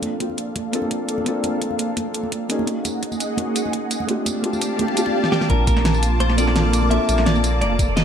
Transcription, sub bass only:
0.00 1.34 A#1 medium
1.44 2.48 A#1 loud
2.50 2.66 F#1 loud
2.67 4.07 F#1 loud
4.26 4.81 F1 loud
4.79 5.15 C2 medium
5.50 6.99 A#1 loud
7.09 7.63 A#1 loud
7.62 8.04 F1 medium

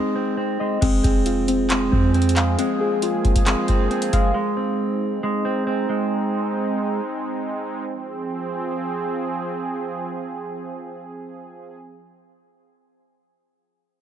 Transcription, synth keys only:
0.00 0.81 C4 medium
0.00 0.82 D#4 medium
0.00 0.60 G#4 medium
0.00 0.16 D#5 medium
0.60 0.82 D#5 medium
0.82 1.47 C4 loud
1.04 2.36 G#4 medium
1.26 2.58 F4 medium
1.48 1.69 C4 medium
1.71 2.57 C4 medium
2.37 3.69 F5 medium
2.58 3.24 C4 medium
2.81 4.13 G#4 medium
3.03 4.35 F4 medium
3.25 3.46 C4 medium
3.47 4.35 C4 medium
4.13 4.35 F5 medium

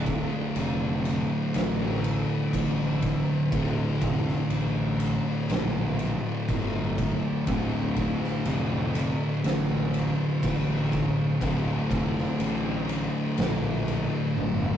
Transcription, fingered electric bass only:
0.00 0.24 D1 medium
0.56 1.23 F1 loud
1.55 2.22 A1 medium
2.54 3.20 A1 medium
3.52 3.86 D1 medium
4.02 4.35 F1 medium
4.50 5.17 A1 loud
5.49 6.16 A#1 loud
6.48 7.15 G1 medium
7.47 8.14 D1 loud
8.45 9.12 F1 loud
9.44 10.11 A1 loud
10.43 11.09 A1 medium
11.41 11.75 D1 medium
11.90 12.24 F1 medium
12.39 13.06 A1 loud
13.38 14.05 A#1 loud
14.37 14.77 G1 medium

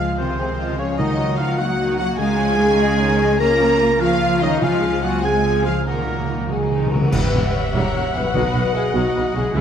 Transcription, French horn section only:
0.00 0.16 F4 medium
0.19 0.78 C4 medium
0.79 0.99 C#4 medium
0.98 1.38 D#4 loud
1.38 1.59 F4 medium
1.59 1.98 F#4 loud
2.00 2.19 F#4 loud
2.19 3.38 G#4 loud
3.39 3.99 A#4 loud
4.01 4.41 F4 loud
4.41 4.62 D#4 loud
4.62 5.03 F4 loud
5.02 5.23 F#4 loud
5.24 5.65 G#4 loud
5.67 5.76 F4 medium
5.87 6.48 A#3 medium
6.50 6.89 G#4 medium
6.91 7.12 A#4 medium
7.12 7.53 B4 loud
7.52 7.73 E5 loud
7.73 8.13 C#5 medium
8.14 8.31 B4 medium
8.32 8.73 B4 loud
8.74 8.95 G#4 loud
8.95 9.36 F#4 medium
9.35 9.54 G#4 loud
9.56 9.61 G#4 loud

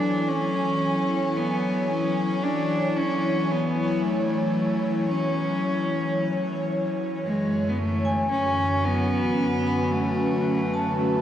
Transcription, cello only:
0.00 0.30 D4 medium
0.29 1.38 C#4 medium
1.37 1.91 B3 medium
1.90 2.45 C#4 medium
2.43 2.98 D4 medium
2.97 3.52 C#4 medium
3.50 4.05 B3 medium
4.03 5.09 A3 medium
5.09 6.65 C#4 medium
7.26 7.71 G#3 medium
7.69 7.80 B3 medium
7.78 8.30 A3 medium
8.31 8.86 C#4 medium
8.84 9.93 B3 loud
9.91 10.96 A3 medium
10.97 11.21 A3 medium

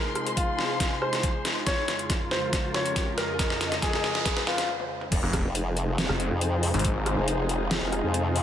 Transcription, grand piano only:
0.00 0.29 A#4 medium
0.37 0.93 F4 medium
1.02 1.58 C5 medium
1.66 2.23 C#5 medium
2.31 2.67 C5 medium
2.74 3.11 C#5 medium
3.18 3.74 A#4 medium
3.82 4.39 G#4 medium
4.47 4.69 F4 medium

